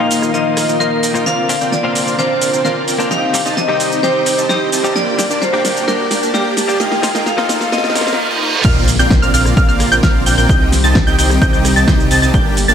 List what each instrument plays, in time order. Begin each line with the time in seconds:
Already playing: analog synth pad D#3 A#3 F4 A#4, vibraphone F5, riser
0.00 clean electric guitar F3 A#3 D#4 F4
0.11 supersaw synth A#3 D#4 F4 D#5 F5, open hi-hat, shaker
0.22 cross-stick, shaker
0.33 clean electric guitar F3 A#3 D#4 F4, supersaw synth A#3 D#4 F4 D#5 F5, vibraphone D#5, shaker
0.46 supersaw synth A#3 D#4 F4 D#5 F5
0.57 cross-stick, open hi-hat, shaker
0.69 supersaw synth A#3 D#4 F4 D#5 G5, shaker
0.79 clean electric guitar F3 A#3 D#4 F4, supersaw synth A#3 D#4 F4 D#5 F5, vibraphone A#4, shaker
1.03 supersaw synth A#3 D#4 F4 D#5 G5, open hi-hat, shaker
1.14 clean electric guitar A#2 F3 A#3 D#4 F4, supersaw synth A#3 D#4 F4 D#5 G5, shaker
1.26 analog synth pad D3 C5, supersaw synth C4 F4 A#4 D5 F5, vibraphone F5, snare, shaker
1.49 clean electric guitar A#2 A#3 C4 D4 F4, open hi-hat, shaker
1.61 supersaw synth C4 F4 A#4 D5 G5, shaker
1.72 vibraphone D5, snare, shaker
1.83 clean electric guitar A#2 A#3 C4 D4 F4, supersaw synth C4 F4 A#4 D5 F5
1.95 supersaw synth C4 F4 A#4 D5 F5, open hi-hat, shaker
2.07 shaker
2.18 clean electric guitar A#2 A#3 C4 D4 F4, supersaw synth C4 F4 A#4 D5 F5, vibraphone C5, snare, shaker
2.30 supersaw synth C4 F4 A#4 D5 F5
2.42 open hi-hat, shaker
2.53 supersaw synth C4 F4 A#4 D5 G5, shaker
2.64 clean electric guitar A#2 A#3 C4 D4 F4, supersaw synth C4 F4 A#4 D5 F5, vibraphone A#4, snare, shaker
2.88 supersaw synth C4 F4 A#4 D5 G5, open hi-hat, shaker
2.99 clean electric guitar A#3 C4 D4 F4, supersaw synth C4 F4 A#4 D5 G5, shaker
3.11 analog synth pad D#3 C4 G4, supersaw synth C4 D#4 G4 D#5 G5, vibraphone F5, snare, shaker
3.33 clean electric guitar C3 G3 C4 D#4 G4, open hi-hat, shaker
3.46 supersaw synth C4 D#4 G4 D#5 A5, shaker
3.57 vibraphone D#5, snare, shaker
3.68 clean electric guitar C3 G3 C4 D#4 G4, supersaw synth C4 D#4 G4 D#5 G5
3.80 supersaw synth C4 D#4 G4 D#5 G5, open hi-hat, shaker
3.92 shaker
4.03 clean electric guitar C3 G3 C4 D#4 G4, supersaw synth C4 D#4 G4 D#5 G5, vibraphone C5, snare, shaker
4.15 supersaw synth C4 D#4 G4 D#5 G5
4.26 open hi-hat, shaker
4.38 supersaw synth C4 D#4 G4 D#5 A5, shaker
4.49 clean electric guitar C3 G3 C4 D#4 G4, supersaw synth C4 D#4 G4 D#5 G5, vibraphone G4, snare, shaker
4.72 supersaw synth C4 D#4 G4 D#5 A5, open hi-hat, shaker
4.83 clean electric guitar G2 G3 C4 D#4 G4, supersaw synth C4 D#4 G4 D#5 A5, shaker
4.95 analog synth pad D3 A#3 A#4, supersaw synth A#3 D4 G4 D5 G5, vibraphone D5, snare, shaker
5.18 clean electric guitar G2 G3 A#3 D4 G4, snare, open hi-hat, shaker
5.30 supersaw synth A#3 D4 G4 D5 A5, shaker
5.42 vibraphone C5, snare, shaker
5.52 clean electric guitar G2 G3 A#3 D4 G4, supersaw synth A#3 D4 G4 D5 G5
5.65 supersaw synth A#3 D4 G4 D5 G5, snare, open hi-hat, shaker
5.77 shaker
5.87 clean electric guitar G2 G3 A#3 D4 G4, supersaw synth A#3 D4 G4 D5 G5, vibraphone A#4, snare, shaker
5.99 supersaw synth A#3 D4 G4 D5 G5
6.11 snare, open hi-hat, shaker
6.22 supersaw synth A#3 D4 G4 D5 A5, shaker
6.33 clean electric guitar G2 G3 A#3 D4 G4, supersaw synth A#3 D4 G4 D5 G5, vibraphone G4, snare, shaker
6.57 supersaw synth A#3 D4 G4 D5 A5, snare, open hi-hat, shaker
6.68 clean electric guitar G3 A#3 D4 G4, supersaw synth A#3 D4 G4 D5 A5, shaker
6.80 analog synth pad D#3 F4 A#4, supersaw synth A#3 D#4 F4 D#5 F5, vibraphone G5, snare, shaker
6.92 snare
7.02 clean electric guitar F3 A#3 D#4 F4, snare, open hi-hat, shaker
7.15 supersaw synth A#3 D#4 F4 D#5 G5, snare, shaker
7.26 vibraphone F5, snare, shaker
7.37 clean electric guitar F3 A#3 D#4 F4, supersaw synth A#3 D#4 F4 D#5 F5, snare
7.49 supersaw synth A#3 D#4 F4 D#5 F5, snare, open hi-hat, shaker
7.61 snare, shaker
7.72 clean electric guitar F3 A#3 D#4 F4, supersaw synth A#3 D#4 F4 D#5 F5, vibraphone D#5, snare, reverse cymbal, shaker
7.78 snare
7.84 supersaw synth A#3 D#4 F4 D#5 F5, snare
7.90 snare
7.95 clean electric guitar F3 A#3 D#4 F4, snare, open hi-hat, shaker
8.01 snare
8.07 supersaw synth A#3 D#4 F4 D#5 F5, snare, shaker
8.13 snare
8.30 supersaw synth A#3 D#4 F4 D#5 G5
8.42 supersaw synth A#3 D#4 F4 D#5 A#5
8.64 detuned saw bass A#1, analog synth pad D3 A#3 C4 F4, supersaw synth C4 F4 A#4 D5 F5, synth pluck F6, kick, crash, impact, shaker
8.88 open hi-hat, shaker
8.99 detuned saw bass A#1, supersaw synth C4 F4 A#4 D5 G5, synth pluck G6, shaker
9.11 kick, snare, shaker
9.22 detuned saw bass A#1, supersaw synth C4 F4 A#4 D5 F5, synth pluck F6, shaker
9.34 detuned saw bass A#1, supersaw synth C4 F4 A#4 D5 F5, synth pluck F6, open hi-hat, shaker
9.45 cross-stick, shaker
9.57 detuned saw bass A#1, supersaw synth C4 F4 A#4 D5 F5, synth pluck F6, kick, shaker
9.69 detuned saw bass A#1, supersaw synth C4 F4 A#4 D5 F5, synth pluck F6, shaker
9.80 cross-stick, open hi-hat, shaker
9.92 detuned saw bass A#1, supersaw synth C4 F4 A#4 D5 G5, synth pluck G6, shaker
10.03 detuned saw bass A#1, supersaw synth C4 F4 A#4 D5 F5, synth pluck F6, kick, snare, shaker
10.26 detuned saw bass A#1, supersaw synth C4 F4 A#4 D5 G5, synth pluck G6, open hi-hat, shaker
10.38 detuned saw bass A#1, supersaw synth C4 F4 A#4 D5 G5, synth pluck G6, shaker
10.49 detuned saw bass C2, analog synth pad D#3 G3 G4, supersaw synth C4 D#4 G4 D#5 G5, synth pluck G6, kick, shaker
10.72 snare, open hi-hat, shaker
10.84 detuned saw bass C2, supersaw synth C4 D#4 G4 D#5 A5, synth pluck A6, shaker
10.95 kick, snare, shaker
11.07 detuned saw bass C2, supersaw synth C4 D#4 G4 D#5 G5, synth pluck G6, shaker
11.18 detuned saw bass C2, supersaw synth C4 D#4 G4 D#5 G5, synth pluck G6, open hi-hat, shaker
11.30 cross-stick, shaker
11.42 detuned saw bass C2, supersaw synth C4 D#4 G4 D#5 G5, synth pluck G6, kick, shaker
11.53 detuned saw bass C2, supersaw synth C4 D#4 G4 D#5 G5, synth pluck G6, shaker
11.65 cross-stick, open hi-hat, shaker
11.76 detuned saw bass C2, supersaw synth C4 D#4 G4 D#5 A5, synth pluck A6, shaker
11.88 detuned saw bass C2, supersaw synth C4 D#4 G4 D#5 G5, synth pluck G6, kick, snare, shaker
12.00 shaker
12.11 detuned saw bass C2, supersaw synth C4 D#4 G4 D#5 A5, synth pluck A6, open hi-hat, shaker
12.22 detuned saw bass C2, supersaw synth C4 D#4 G4 D#5 A5, synth pluck A6, shaker
12.34 detuned saw bass G1, analog synth pad D3 A#3, supersaw synth A#3 D4 G4 D5 G5, synth pluck G6, kick, shaker
12.57 open hi-hat, shaker
12.68 detuned saw bass G1, supersaw synth A#3 D4 G4 D5 A5, synth pluck A6, shaker